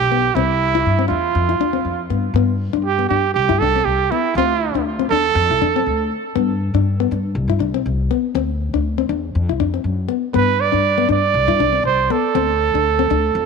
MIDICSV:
0, 0, Header, 1, 4, 480
1, 0, Start_track
1, 0, Key_signature, 0, "major"
1, 0, Tempo, 500417
1, 335, Time_signature, 4, 2, 24, 8
1, 12907, End_track
2, 0, Start_track
2, 0, Title_t, "Trumpet"
2, 0, Program_c, 0, 56
2, 0, Note_on_c, 0, 67, 97
2, 334, Note_on_c, 0, 64, 88
2, 348, Note_off_c, 0, 67, 0
2, 1029, Note_off_c, 0, 64, 0
2, 1035, Note_on_c, 0, 65, 77
2, 1965, Note_off_c, 0, 65, 0
2, 2730, Note_on_c, 0, 67, 84
2, 2954, Note_off_c, 0, 67, 0
2, 2964, Note_on_c, 0, 67, 83
2, 3190, Note_off_c, 0, 67, 0
2, 3206, Note_on_c, 0, 67, 92
2, 3445, Note_on_c, 0, 69, 98
2, 3460, Note_off_c, 0, 67, 0
2, 3693, Note_on_c, 0, 67, 93
2, 3707, Note_off_c, 0, 69, 0
2, 3944, Note_on_c, 0, 64, 82
2, 3959, Note_off_c, 0, 67, 0
2, 4178, Note_off_c, 0, 64, 0
2, 4187, Note_on_c, 0, 65, 82
2, 4626, Note_off_c, 0, 65, 0
2, 4887, Note_on_c, 0, 69, 104
2, 5810, Note_off_c, 0, 69, 0
2, 9924, Note_on_c, 0, 71, 97
2, 10175, Note_on_c, 0, 74, 105
2, 10189, Note_off_c, 0, 71, 0
2, 10653, Note_off_c, 0, 74, 0
2, 10658, Note_on_c, 0, 74, 102
2, 11336, Note_off_c, 0, 74, 0
2, 11370, Note_on_c, 0, 72, 94
2, 11619, Note_on_c, 0, 69, 85
2, 11633, Note_off_c, 0, 72, 0
2, 12907, Note_off_c, 0, 69, 0
2, 12907, End_track
3, 0, Start_track
3, 0, Title_t, "Nylon-string guitar"
3, 0, Program_c, 1, 24
3, 112, Note_on_c, 1, 59, 78
3, 246, Note_off_c, 1, 59, 0
3, 350, Note_on_c, 1, 60, 88
3, 485, Note_off_c, 1, 60, 0
3, 720, Note_on_c, 1, 64, 69
3, 854, Note_off_c, 1, 64, 0
3, 947, Note_on_c, 1, 60, 67
3, 1010, Note_off_c, 1, 60, 0
3, 1037, Note_on_c, 1, 62, 65
3, 1181, Note_off_c, 1, 62, 0
3, 1430, Note_on_c, 1, 64, 66
3, 1492, Note_off_c, 1, 64, 0
3, 1542, Note_on_c, 1, 62, 71
3, 1615, Note_off_c, 1, 62, 0
3, 1662, Note_on_c, 1, 60, 59
3, 1801, Note_off_c, 1, 60, 0
3, 2018, Note_on_c, 1, 59, 71
3, 2156, Note_off_c, 1, 59, 0
3, 2262, Note_on_c, 1, 59, 86
3, 2398, Note_off_c, 1, 59, 0
3, 2622, Note_on_c, 1, 62, 69
3, 2761, Note_off_c, 1, 62, 0
3, 2866, Note_on_c, 1, 59, 64
3, 2929, Note_off_c, 1, 59, 0
3, 2980, Note_on_c, 1, 62, 69
3, 3117, Note_off_c, 1, 62, 0
3, 3348, Note_on_c, 1, 64, 69
3, 3410, Note_off_c, 1, 64, 0
3, 3476, Note_on_c, 1, 62, 75
3, 3544, Note_off_c, 1, 62, 0
3, 3605, Note_on_c, 1, 60, 64
3, 3737, Note_off_c, 1, 60, 0
3, 3950, Note_on_c, 1, 59, 78
3, 4084, Note_off_c, 1, 59, 0
3, 4200, Note_on_c, 1, 60, 90
3, 4331, Note_off_c, 1, 60, 0
3, 4559, Note_on_c, 1, 62, 69
3, 4693, Note_off_c, 1, 62, 0
3, 4791, Note_on_c, 1, 60, 70
3, 4851, Note_off_c, 1, 60, 0
3, 4913, Note_on_c, 1, 62, 68
3, 5046, Note_off_c, 1, 62, 0
3, 5285, Note_on_c, 1, 64, 67
3, 5342, Note_off_c, 1, 64, 0
3, 5388, Note_on_c, 1, 62, 76
3, 5458, Note_off_c, 1, 62, 0
3, 5526, Note_on_c, 1, 60, 68
3, 5658, Note_off_c, 1, 60, 0
3, 6097, Note_on_c, 1, 59, 90
3, 6234, Note_off_c, 1, 59, 0
3, 6472, Note_on_c, 1, 62, 73
3, 6608, Note_off_c, 1, 62, 0
3, 6716, Note_on_c, 1, 59, 71
3, 6775, Note_off_c, 1, 59, 0
3, 6831, Note_on_c, 1, 62, 70
3, 6964, Note_off_c, 1, 62, 0
3, 7190, Note_on_c, 1, 64, 68
3, 7251, Note_off_c, 1, 64, 0
3, 7293, Note_on_c, 1, 62, 78
3, 7368, Note_off_c, 1, 62, 0
3, 7427, Note_on_c, 1, 60, 69
3, 7565, Note_off_c, 1, 60, 0
3, 7777, Note_on_c, 1, 59, 75
3, 7914, Note_off_c, 1, 59, 0
3, 8012, Note_on_c, 1, 60, 86
3, 8151, Note_off_c, 1, 60, 0
3, 8383, Note_on_c, 1, 62, 69
3, 8522, Note_off_c, 1, 62, 0
3, 8615, Note_on_c, 1, 60, 69
3, 8681, Note_off_c, 1, 60, 0
3, 8722, Note_on_c, 1, 62, 68
3, 8864, Note_off_c, 1, 62, 0
3, 9107, Note_on_c, 1, 64, 69
3, 9169, Note_off_c, 1, 64, 0
3, 9208, Note_on_c, 1, 62, 78
3, 9285, Note_off_c, 1, 62, 0
3, 9340, Note_on_c, 1, 60, 67
3, 9480, Note_off_c, 1, 60, 0
3, 9674, Note_on_c, 1, 59, 77
3, 9818, Note_off_c, 1, 59, 0
3, 9920, Note_on_c, 1, 59, 84
3, 10062, Note_off_c, 1, 59, 0
3, 10285, Note_on_c, 1, 62, 70
3, 10429, Note_off_c, 1, 62, 0
3, 10530, Note_on_c, 1, 59, 66
3, 10597, Note_off_c, 1, 59, 0
3, 10635, Note_on_c, 1, 62, 71
3, 10779, Note_off_c, 1, 62, 0
3, 11013, Note_on_c, 1, 64, 75
3, 11079, Note_off_c, 1, 64, 0
3, 11130, Note_on_c, 1, 62, 81
3, 11206, Note_off_c, 1, 62, 0
3, 11248, Note_on_c, 1, 60, 67
3, 11392, Note_off_c, 1, 60, 0
3, 11610, Note_on_c, 1, 59, 76
3, 11750, Note_off_c, 1, 59, 0
3, 11847, Note_on_c, 1, 60, 89
3, 11988, Note_off_c, 1, 60, 0
3, 12230, Note_on_c, 1, 62, 74
3, 12367, Note_off_c, 1, 62, 0
3, 12461, Note_on_c, 1, 60, 71
3, 12525, Note_off_c, 1, 60, 0
3, 12575, Note_on_c, 1, 62, 71
3, 12713, Note_off_c, 1, 62, 0
3, 12907, End_track
4, 0, Start_track
4, 0, Title_t, "Upright bass"
4, 0, Program_c, 2, 32
4, 0, Note_on_c, 2, 35, 80
4, 301, Note_off_c, 2, 35, 0
4, 336, Note_on_c, 2, 36, 92
4, 777, Note_off_c, 2, 36, 0
4, 823, Note_on_c, 2, 43, 81
4, 1038, Note_off_c, 2, 43, 0
4, 1053, Note_on_c, 2, 40, 84
4, 1272, Note_off_c, 2, 40, 0
4, 1294, Note_on_c, 2, 41, 96
4, 1513, Note_off_c, 2, 41, 0
4, 1531, Note_on_c, 2, 40, 78
4, 1748, Note_off_c, 2, 40, 0
4, 1771, Note_on_c, 2, 41, 80
4, 1988, Note_off_c, 2, 41, 0
4, 2011, Note_on_c, 2, 43, 76
4, 2228, Note_off_c, 2, 43, 0
4, 2241, Note_on_c, 2, 43, 88
4, 2584, Note_off_c, 2, 43, 0
4, 2621, Note_on_c, 2, 43, 82
4, 2940, Note_off_c, 2, 43, 0
4, 2975, Note_on_c, 2, 43, 83
4, 3193, Note_off_c, 2, 43, 0
4, 3220, Note_on_c, 2, 36, 97
4, 3335, Note_off_c, 2, 36, 0
4, 3352, Note_on_c, 2, 43, 86
4, 3447, Note_off_c, 2, 43, 0
4, 3457, Note_on_c, 2, 36, 84
4, 3673, Note_off_c, 2, 36, 0
4, 3694, Note_on_c, 2, 36, 81
4, 3912, Note_off_c, 2, 36, 0
4, 4172, Note_on_c, 2, 38, 92
4, 4509, Note_off_c, 2, 38, 0
4, 4548, Note_on_c, 2, 38, 80
4, 4864, Note_off_c, 2, 38, 0
4, 4896, Note_on_c, 2, 40, 92
4, 5112, Note_off_c, 2, 40, 0
4, 5133, Note_on_c, 2, 41, 101
4, 5251, Note_off_c, 2, 41, 0
4, 5274, Note_on_c, 2, 36, 89
4, 5368, Note_off_c, 2, 36, 0
4, 5386, Note_on_c, 2, 41, 85
4, 5598, Note_off_c, 2, 41, 0
4, 5625, Note_on_c, 2, 38, 82
4, 5837, Note_off_c, 2, 38, 0
4, 6096, Note_on_c, 2, 43, 89
4, 6431, Note_off_c, 2, 43, 0
4, 6463, Note_on_c, 2, 43, 87
4, 6781, Note_off_c, 2, 43, 0
4, 6822, Note_on_c, 2, 43, 88
4, 7035, Note_off_c, 2, 43, 0
4, 7050, Note_on_c, 2, 36, 103
4, 7166, Note_off_c, 2, 36, 0
4, 7172, Note_on_c, 2, 43, 85
4, 7276, Note_off_c, 2, 43, 0
4, 7281, Note_on_c, 2, 36, 84
4, 7504, Note_off_c, 2, 36, 0
4, 7536, Note_on_c, 2, 36, 90
4, 7752, Note_off_c, 2, 36, 0
4, 8005, Note_on_c, 2, 38, 94
4, 8345, Note_off_c, 2, 38, 0
4, 8378, Note_on_c, 2, 38, 78
4, 8699, Note_off_c, 2, 38, 0
4, 8721, Note_on_c, 2, 40, 91
4, 8944, Note_off_c, 2, 40, 0
4, 8970, Note_on_c, 2, 41, 92
4, 9089, Note_off_c, 2, 41, 0
4, 9103, Note_on_c, 2, 36, 81
4, 9200, Note_off_c, 2, 36, 0
4, 9206, Note_on_c, 2, 41, 83
4, 9427, Note_off_c, 2, 41, 0
4, 9439, Note_on_c, 2, 42, 85
4, 9663, Note_off_c, 2, 42, 0
4, 9927, Note_on_c, 2, 43, 91
4, 10267, Note_off_c, 2, 43, 0
4, 10293, Note_on_c, 2, 43, 80
4, 10616, Note_off_c, 2, 43, 0
4, 10638, Note_on_c, 2, 43, 88
4, 10863, Note_off_c, 2, 43, 0
4, 10877, Note_on_c, 2, 36, 94
4, 10999, Note_off_c, 2, 36, 0
4, 11005, Note_on_c, 2, 43, 88
4, 11113, Note_off_c, 2, 43, 0
4, 11121, Note_on_c, 2, 36, 84
4, 11345, Note_off_c, 2, 36, 0
4, 11354, Note_on_c, 2, 36, 88
4, 11581, Note_off_c, 2, 36, 0
4, 11845, Note_on_c, 2, 38, 94
4, 12186, Note_off_c, 2, 38, 0
4, 12220, Note_on_c, 2, 38, 82
4, 12540, Note_off_c, 2, 38, 0
4, 12567, Note_on_c, 2, 38, 93
4, 12788, Note_off_c, 2, 38, 0
4, 12805, Note_on_c, 2, 41, 101
4, 12907, Note_off_c, 2, 41, 0
4, 12907, End_track
0, 0, End_of_file